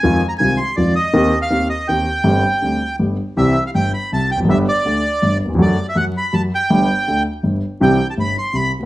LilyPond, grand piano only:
\new Staff \with { instrumentName = "Grand piano" } { \clef bass \time 3/4 \key c \minor \tempo 4 = 162 <f, ees f aes c' f'>8 r8 <c, c ees aes c' f'>8 r8 <f, ees f aes c' f'>8 r8 | <ees, ees bes c' g'>8 r8 <ees, ees bes c' g'>8 r8 <ees, ees bes c' g'>8 r8 | <g,, g, d g c' g'>8 r8 <d, d g c' g'>8 r8 <g,, g, d g b g'>8 r8 | \key c \major <c, c e g c' g'>8 r8 <g,, g,>8 r8 <c, c>8 r32 e,32 f,32 fis,32 |
<g,, g, d g b g'>8 r8 <d, d>8 r8 <g,, g,>8 r32 ees,32 e,32 f,32 | <fis, d fis a fis'>8 r8 <fis, fis>8 r8 <fis, fis>8 r8 | <g,, g, d g b g'>8 r8 <d, d>8 r8 <g,, g,>8 r8 | <c, c e g c' g'>8 r8 <g,, g,>8 r8 <c, c>8 r32 d,32 r16 | }